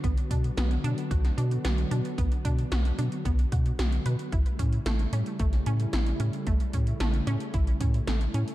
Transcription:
<<
  \new Staff \with { instrumentName = "Synth arpeggio sound" } { \time 4/4 \key b \minor \tempo 4 = 112 b8 d'8 b8 d'8 fis'8 d'8 b8 d'8 | b8 d'8 fis'8 d'8 b8 fis'8 fis'8 b'8 | e'8 cis'8 a8 cis'8 a8 cis'8 e'8 cis'8 | a8 cis'8 a8 cis'8 e'8 cis'8 a8 cis'8 | }
  \new Staff \with { instrumentName = "Analog synth pad" } { \clef bass \time 4/4 \key b \minor <d fis b fis'>1~ | <d fis b fis'>1 | <cis g a e'>1~ | <cis g a e'>1 | }
  \new Staff \with { instrumentName = "Analog synth bass" } { \clef bass \time 4/4 \key b \minor b,,8 b,8 b,,8 b,8 b,,8 b,8 b,,8 b,8 | b,,8 b,8 b,,8 b,8 b,,8 b,8 b,,8 b,8 | a,,8 a,8 a,,8 a,8 a,,8 a,8 a,,8 a,8 | a,,8 a,8 a,,8 a,8 a,,8 a,8 a,,8 a,8 | }
  \new DrumStaff \with { instrumentName = "Drums" } \drummode { \time 4/4 <hh bd>16 hh16 <hh bd>16 hh16 <hh sn>16 hh16 hh16 hh16 <hh bd>16 <hh sn>16 hh16 hh16 <hh sn>16 hh16 hh16 hh16 | <hh bd>16 hh16 <hh bd>16 hh16 <hh sn>16 hh16 hh16 hh16 <hh bd>16 hh16 <hh bd>16 hh16 <hh sn>16 hh16 hh16 hh16 | <hh bd>16 hh16 <hh bd>16 hh16 <hh sn>16 hh16 hh16 hh16 <hh bd>16 <hh sn>16 hh16 hh16 <hh sn>16 hh16 hh16 hh16 | <hh bd>16 hh16 <hh bd>16 hh16 <hh sn>16 hh16 hh16 hh16 <hh bd>16 hh16 <hh bd>16 hh16 <hh sn>16 hh16 hh16 hh16 | }
>>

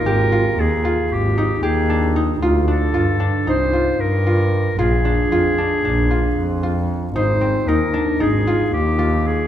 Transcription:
<<
  \new Staff \with { instrumentName = "Clarinet" } { \time 9/8 \key aes \lydian \tempo 4. = 76 bes'4 aes'4 g'4 aes'4 r8 | r8 a'4. c''4 bes'4. | aes'1 r8 | c''4 bes'4 aes'4 g'4 aes'8 | }
  \new Staff \with { instrumentName = "Harp" } { \time 9/8 \key aes \lydian g'8 f'4 f'4 ees'8 g'8 d'8 ees'8 | f'8 d'8 f'8 d'8 ees'8 f'4 f'4 | f'8 d'8 f'8 d'8 d'8 f'4 f'4 | ees'8 c'8 ees'8 d'8 ees'8 f'4 f'4 | }
  \new Staff \with { instrumentName = "Double bass" } { \clef bass \time 9/8 \key aes \lydian aes,,4 ees,8 r8 aes,,4 ees,4. | d,4 g,8 r8 c,4 g,4. | bes,,4 f,8 r8 bes,,4 f,4. | aes,,4 ees,8 r8 aes,,4 ees,4. | }
>>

